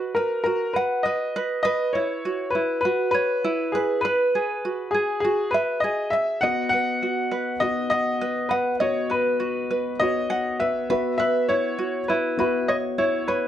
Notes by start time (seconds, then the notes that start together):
Already playing: F#4 B4 D#5 F#5
0.15 A#4 B4
0.44 F#4 A#4
0.73 B4 F#5
1.03 B4 D#5
1.36 B4
1.63 B4 D#5
1.93 E4 C#5
2.25 F#4
2.50 B4
2.55 E4
2.81 B4
2.85 F#4
3.11 B4 C#5
3.44 E4
3.72 G#4 B4
4.01 B4
4.35 G#4
4.65 F#4
4.91 G#4
5.20 G#4
5.24 F#4
5.51 B4 E5
5.80 G#4 D#5
6.10 E5
6.41 B3 F#4 D#5 F#5
6.69 B4 F#5
7.03 F#4
7.31 B4
7.60 B3 F#4 D#5
7.90 D#5 F#5
8.21 B4
8.49 B4 F#5
8.80 B3 F#4 C#5 D#5
9.10 B4
9.40 F#4
9.71 B4
10.00 B3 F#4 C#5 D#5
10.30 F#5
10.60 B4 E5
10.90 B3 F#4 B4 E5
11.18 B4 E5
11.49 E4 C#5
11.79 F#4
12.08 E4 B4
12.37 B3 F#4 B4 E5
12.68 C#5 D#5
12.98 E4 C#5
13.28 B4 C#5